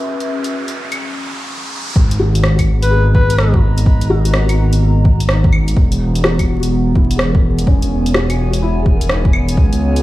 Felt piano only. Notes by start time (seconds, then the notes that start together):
Already playing: C#4
2.19 F#4
2.91 G#4
4.10 F#4
4.30 A#4
5.29 D#4
6.24 F#4
6.96 E4
7.16 G#4
7.29 A#4
7.67 C#4
8.15 F#4
8.62 E4
8.82 G#4
8.96 A#4
9.10 D#4